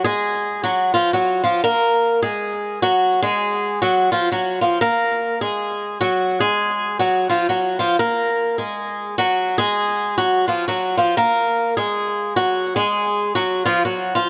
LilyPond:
\new Staff \with { instrumentName = "Steel-string acoustic guitar" } { \time 4/4 \key ges \major \tempo 4 = 151 <aes aes'>4. <ges ges'>8. <f f'>8 <ges ges'>8. <f f'>8 | <bes bes'>4. <aes aes'>4. <ges ges'>4 | <aes aes'>4. <ges ges'>8. <f f'>8 <ges ges'>8. <f f'>8 | <bes bes'>4. <aes aes'>4. <ges ges'>4 |
<aes aes'>4. <ges ges'>8. <f f'>8 <ges ges'>8. <f f'>8 | <bes bes'>4. <aes aes'>4. <ges ges'>4 | <aes aes'>4. <ges ges'>8. <f f'>8 <ges ges'>8. <f f'>8 | <bes bes'>4. <aes aes'>4. <ges ges'>4 |
<aes aes'>4. <ges ges'>8. <f f'>8 <ges ges'>8. <f f'>8 | }